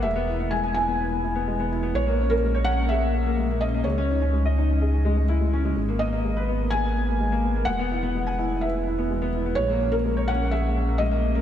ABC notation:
X:1
M:4/4
L:1/16
Q:1/4=126
K:Elyd
V:1 name="Felt piano"
e4 g2 g8 z2 | c3 A3 f2 e6 d2 | c12 z4 | z2 d6 g8 |
f8 e6 z2 | c3 A3 f2 e4 d4 |]
V:2 name="Upright piano"
G, B, E B, G, g E B, B B, E B, G, B, E B, | G, A, C A, G, c C A, G A, C A, G, A, C A, | G, C D C G, d D C G C G, G, E G, C G, | G, A, B, A, G, B B, A, G A, B, A, G, A, B, A, |
G, B, E B, G, g E B, B B, E B, G, B, E B, | G, A, C A, G, c C A, G A, C A, G, A, C A, |]
V:3 name="Detuned saw bass" clef=bass
E,,,16 | A,,,16 | C,,16 | G,,,16 |
E,,,16 | A,,,16 |]